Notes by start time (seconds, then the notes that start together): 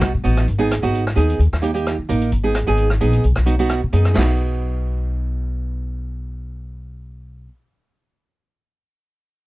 Already playing: B3 D#4 F#4
0.01 kick, cross-stick, closed hi-hat
0.15 B2
0.24 A1 B3 D#4 F#4, closed hi-hat
0.37 cross-stick, closed hi-hat
0.48 G#1, closed hi-hat
0.59 B3 D#4 G#4
0.71 cross-stick, closed hi-hat
0.82 G#1 B3 D#4 F#4, closed hi-hat
0.95 closed hi-hat
1.07 cross-stick
1.16 D#2 B3 D#4 G#4, closed hi-hat
1.30 closed hi-hat
1.39 D#2, closed hi-hat
1.53 D#2, cross-stick
1.62 A#3 D#4 G4, closed hi-hat
1.74 A#3 D#4 G4, closed hi-hat
1.87 cross-stick, closed hi-hat
1.99 D#3
2.09 A1 A#3 D#4 A#4, closed hi-hat
2.21 closed hi-hat
2.32 G#1, closed hi-hat
2.44 B3 D#4 G#4
2.55 cross-stick, closed hi-hat
2.67 G#1 B3 D#4 G#4, closed hi-hat
2.77 closed hi-hat
2.90 cross-stick
3.01 A#1 B3 D#4 G#4, closed hi-hat
3.13 closed hi-hat
3.24 B1, closed hi-hat
3.36 B1, cross-stick
3.46 B3 D#4 F#4, closed hi-hat
3.59 B3 D#4 F#4, closed hi-hat
3.69 cross-stick, closed hi-hat
3.84 B2
3.93 F#2 B3 D#4 G#4, closed hi-hat
4.05 cross-stick, closed hi-hat
4.14 B1 B3 D#4, snare, crash
4.18 F#4